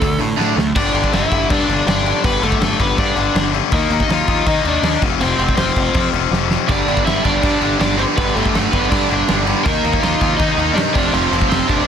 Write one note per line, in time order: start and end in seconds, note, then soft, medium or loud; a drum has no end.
0.00 0.16 D2 medium
0.00 0.18 D3 medium
0.00 0.18 A3 loud
0.00 0.18 A4 loud
0.00 kick loud
0.00 open hi-hat medium
0.20 0.34 A2 medium
0.20 0.37 D3 medium
0.20 0.37 A3 medium
0.38 0.53 A2 loud
0.38 0.55 D3 loud
0.38 0.55 A3 loud
0.38 0.56 D4 loud
0.38 snare medium
0.56 0.71 D2 medium
0.56 0.73 D3 medium
0.56 0.73 A3 medium
0.56 snare loud
0.75 0.88 G1 medium
0.75 0.93 G2 medium
0.75 0.92 D3 loud
0.75 0.94 G3 loud
0.75 1.11 D4 medium
0.75 1.14 D5 medium
0.75 kick loud
0.75 crash loud
0.75 crash medium
0.93 1.06 G1 medium
0.93 1.12 G2 medium
0.93 1.12 D3 medium
0.93 1.12 G3 loud
0.93 crash medium
1.04 kick medium
1.12 1.24 G1 medium
1.12 1.31 G2 loud
1.12 1.31 D3 loud
1.12 1.32 G3 loud
1.12 1.47 E4 medium
1.12 1.50 E5 medium
1.12 snare loud
1.12 crash medium
1.32 1.44 G1 medium
1.32 1.49 G2 medium
1.32 1.49 D3 loud
1.32 1.50 G3 loud
1.32 kick medium
1.32 crash medium
1.50 1.68 G2 loud
1.50 1.62 G2 loud
1.50 1.68 D3 loud
1.50 1.70 G3 loud
1.50 1.84 D4 medium
1.50 1.84 D5 medium
1.50 kick loud
1.50 crash loud
1.68 1.80 G1 medium
1.68 1.86 G2 medium
1.68 1.86 D3 loud
1.68 1.88 G3 loud
1.68 crash medium
1.86 2.11 G1 loud
1.86 2.04 G2 loud
1.86 2.05 D3 loud
1.86 2.06 G3 loud
1.86 2.22 D4 medium
1.86 2.24 D5 medium
1.86 snare loud
1.86 crash loud
2.06 2.23 G2 medium
2.06 2.23 D3 medium
2.06 2.24 G3 medium
2.06 crash medium
2.24 2.36 G1 loud
2.24 2.41 G2 loud
2.24 2.41 D3 loud
2.24 2.42 G3 loud
2.24 2.41 B3 medium
2.24 2.42 B4 loud
2.24 kick loud
2.24 crash loud
2.42 2.54 G1 medium
2.42 2.59 G2 medium
2.42 2.60 D3 loud
2.42 2.61 G3 loud
2.42 2.60 A3 medium
2.42 2.60 A4 medium
2.42 crash medium
2.52 kick medium
2.61 2.73 G1 medium
2.61 2.78 G2 medium
2.61 2.79 D3 loud
2.61 2.79 G3 loud
2.61 2.78 A3 medium
2.61 2.80 A4 medium
2.61 snare loud
2.61 crash medium
2.79 2.92 G1 loud
2.79 2.96 G2 medium
2.79 2.97 D3 loud
2.79 2.97 G3 loud
2.79 2.96 B3 medium
2.79 2.98 B4 loud
2.79 kick loud
2.79 crash medium
2.98 3.14 G2 loud
2.98 3.10 G2 loud
2.98 3.15 D3 loud
2.98 3.16 G3 loud
2.98 3.50 D4 medium
2.98 3.50 D5 loud
2.98 kick loud
2.98 crash medium
3.15 3.28 G1 medium
3.15 3.33 G2 medium
3.15 3.34 D3 medium
3.15 3.34 G3 loud
3.15 crash medium
3.35 3.60 G1 loud
3.35 3.51 G2 loud
3.35 3.52 D3 loud
3.35 3.52 G3 loud
3.35 snare loud
3.35 crash medium
3.52 3.70 G2 medium
3.52 3.71 D3 medium
3.52 3.71 G3 loud
3.52 crash medium
3.71 3.84 D#2 loud
3.71 3.89 D#3 loud
3.71 3.90 A#3 loud
3.71 4.01 A#3 medium
3.71 3.90 D#4 loud
3.71 4.04 A#4 medium
3.71 kick loud
3.71 crash medium
3.90 4.03 D#2 medium
3.90 4.07 D#3 loud
3.90 4.07 A#3 medium
3.90 4.08 D#4 loud
3.90 crash medium
4.00 4.09 D#5 medium
4.00 kick medium
4.08 4.21 D#2 loud
4.08 4.25 D#3 loud
4.08 4.26 A#3 loud
4.08 4.26 D#4 loud
4.08 snare loud
4.08 crash medium
4.12 4.45 F4 medium
4.12 4.48 F5 loud
4.27 4.40 D#2 medium
4.27 4.45 D#3 loud
4.27 4.45 A#3 medium
4.27 4.46 D#4 loud
4.27 kick medium
4.27 crash medium
4.46 4.63 D#3 loud
4.46 4.59 D#3 loud
4.46 4.63 A#3 loud
4.46 4.64 D#4 loud
4.46 4.64 D#4 medium
4.46 4.64 D#5 loud
4.46 kick loud
4.46 crash medium
4.64 4.77 D#2 medium
4.64 4.81 D#3 loud
4.64 4.82 A#3 loud
4.64 5.01 D4 medium
4.64 4.83 D#4 loud
4.64 crash medium
4.69 5.01 D5 medium
4.83 4.95 D#2 loud
4.83 5.00 D#3 loud
4.83 5.01 A#3 loud
4.83 5.01 D#4 loud
4.83 snare loud
4.83 crash loud
5.01 5.14 F1 medium
5.01 5.19 F2 loud
5.01 5.20 C3 loud
5.01 5.20 F3 loud
5.01 kick loud
5.01 crash medium
5.20 5.32 F1 loud
5.20 5.37 F2 medium
5.20 5.38 C3 loud
5.20 5.38 F3 loud
5.20 5.55 C4 medium
5.20 5.56 C5 loud
5.20 crash loud
5.38 5.51 F1 medium
5.38 5.57 F2 medium
5.38 5.57 C3 medium
5.38 5.57 F3 loud
5.38 crash medium
5.49 kick medium
5.57 5.69 F1 loud
5.57 5.75 F2 medium
5.57 5.75 C3 loud
5.57 5.76 F3 loud
5.57 6.09 C4 medium
5.57 6.09 C5 medium
5.57 snare loud
5.57 crash medium
5.76 5.88 F1 medium
5.76 5.94 F2 loud
5.76 5.95 C3 loud
5.76 5.95 F3 loud
5.76 kick medium
5.76 crash medium
5.94 6.13 F2 loud
5.94 6.07 F2 medium
5.94 6.13 C3 loud
5.94 6.13 F3 loud
5.94 kick loud
5.94 crash loud
6.12 6.25 F1 medium
6.12 6.30 F2 medium
6.12 6.30 C3 medium
6.12 6.31 F3 loud
6.12 crash medium
6.31 6.56 F1 loud
6.31 6.49 F2 loud
6.31 6.49 C3 loud
6.31 6.50 F3 loud
6.31 snare medium
6.50 6.67 F2 medium
6.50 6.68 C3 medium
6.50 6.68 F3 medium
6.50 snare medium
6.68 6.81 G1 loud
6.68 6.86 G2 medium
6.68 6.86 D3 loud
6.68 6.87 G3 loud
6.68 7.03 D4 medium
6.68 7.05 D5 loud
6.68 kick loud
6.68 splash medium
6.68 crash medium
6.87 7.00 G1 medium
6.87 7.05 G2 medium
6.87 7.05 D3 medium
6.87 7.06 G3 loud
6.87 crash medium
6.97 kick medium
7.04 7.18 G1 loud
7.04 7.24 G2 loud
7.04 7.23 D3 loud
7.04 7.24 G3 loud
7.04 7.22 E4 medium
7.04 7.23 E5 medium
7.04 snare loud
7.04 crash medium
7.24 7.37 G1 medium
7.24 7.41 G2 loud
7.24 7.41 D3 loud
7.24 7.43 G3 loud
7.24 7.76 D4 medium
7.24 7.76 D5 medium
7.24 kick medium
7.24 crash medium
7.42 7.60 G2 loud
7.42 7.55 G2 loud
7.42 7.60 D3 loud
7.42 7.62 G3 loud
7.42 kick loud
7.42 crash medium
7.61 7.74 G1 medium
7.61 7.78 G2 loud
7.61 7.78 D3 medium
7.61 7.80 G3 loud
7.61 crash medium
7.79 8.04 G1 loud
7.79 7.97 G2 loud
7.79 7.97 D3 loud
7.79 7.98 G3 loud
7.79 7.97 D4 medium
7.79 7.98 D5 medium
7.79 snare loud
7.79 crash medium
7.98 8.16 G2 medium
7.98 8.17 D3 loud
7.98 8.18 G3 loud
7.98 8.03 C4 medium
7.98 8.03 C5 medium
7.98 crash medium
8.17 8.30 G1 medium
8.17 8.35 G2 loud
8.17 8.36 D3 loud
8.17 8.37 G3 loud
8.17 8.34 B3 medium
8.17 8.35 B4 medium
8.17 kick loud
8.17 crash medium
8.34 8.48 G1 medium
8.34 8.54 G2 medium
8.34 8.54 D3 loud
8.34 8.55 G3 loud
8.34 8.69 A3 medium
8.34 8.70 A4 medium
8.34 crash medium
8.46 kick loud
8.54 8.66 G1 loud
8.54 8.73 G2 loud
8.54 8.73 D3 loud
8.54 8.74 G3 loud
8.54 snare loud
8.54 crash medium
8.71 8.85 G1 loud
8.71 8.91 G2 medium
8.71 8.91 D3 medium
8.71 8.88 B3 medium
8.71 8.90 B4 medium
8.71 kick medium
8.71 crash medium
8.75 8.92 G3 loud
8.90 9.04 G2 loud
8.90 9.09 G2 loud
8.90 9.10 D3 loud
8.90 9.11 G3 loud
8.90 9.42 D4 medium
8.90 9.42 D5 loud
8.90 kick loud
8.90 crash loud
9.10 9.22 G1 medium
9.10 9.28 G2 medium
9.10 9.28 D3 loud
9.10 9.29 G3 loud
9.10 crash medium
9.28 9.53 G1 loud
9.28 9.46 G2 loud
9.28 9.47 D3 loud
9.28 9.48 G3 loud
9.28 snare loud
9.28 crash medium
9.47 9.64 G2 medium
9.47 9.64 D3 loud
9.47 9.65 G3 loud
9.47 crash medium
9.64 9.78 D#2 loud
9.64 9.82 D#3 loud
9.64 9.99 A#3 medium
9.64 9.83 A#3 loud
9.64 9.84 D#4 loud
9.64 10.03 A#4 loud
9.64 kick loud
9.64 crash medium
9.84 9.96 D#2 medium
9.84 10.01 D#3 loud
9.84 10.02 A#3 loud
9.84 10.02 D#4 loud
9.84 crash medium
9.93 kick medium
10.00 10.15 D#2 loud
10.00 10.19 D#3 medium
10.00 10.20 A#3 loud
10.00 10.20 D#4 loud
10.00 10.36 F4 medium
10.00 10.35 F5 loud
10.00 snare loud
10.00 crash medium
10.21 10.33 D#2 medium
10.21 10.38 D#3 medium
10.21 10.38 A#3 loud
10.21 10.39 D#4 loud
10.21 kick loud
10.21 crash medium
10.37 10.51 D#3 loud
10.37 10.57 D#3 loud
10.37 10.58 A#3 loud
10.37 10.73 D#4 medium
10.37 10.58 D#4 loud
10.37 10.74 D#5 loud
10.37 kick loud
10.37 crash medium
10.58 10.70 D#2 medium
10.58 10.76 D#3 medium
10.58 10.76 A#3 loud
10.58 10.77 D#4 loud
10.58 crash medium
10.74 10.88 G2 loud
10.74 10.94 D#3 loud
10.74 10.94 A#3 loud
10.74 10.79 D4 medium
10.74 10.79 D5 loud
10.74 crash medium
10.78 10.94 D#4 loud
10.78 snare loud
10.94 11.07 F1 medium
10.94 11.12 F2 loud
10.94 11.13 C3 loud
10.94 11.13 F3 loud
10.94 11.11 D4 medium
10.94 11.13 D5 medium
10.94 kick loud
10.94 crash loud
11.13 11.25 F1 loud
11.13 11.31 F2 loud
11.13 11.31 C3 loud
11.13 11.32 F3 loud
11.13 11.48 C4 medium
11.13 11.48 C5 loud
11.13 crash medium
11.31 11.43 F1 medium
11.31 11.50 F2 loud
11.31 11.50 C3 loud
11.31 11.51 F3 loud
11.31 crash medium
11.42 kick medium
11.49 11.62 F1 medium
11.49 11.67 F2 loud
11.49 11.68 C3 loud
11.49 11.69 F3 loud
11.49 11.66 C4 medium
11.49 11.67 C5 medium
11.49 snare loud
11.49 crash loud
11.67 11.81 F1 medium
11.67 11.86 F2 medium
11.67 11.87 C3 medium
11.67 11.87 F3 loud
11.67 11.87 D4 medium
11.67 11.87 D5 loud
11.67 kick medium
11.67 crash medium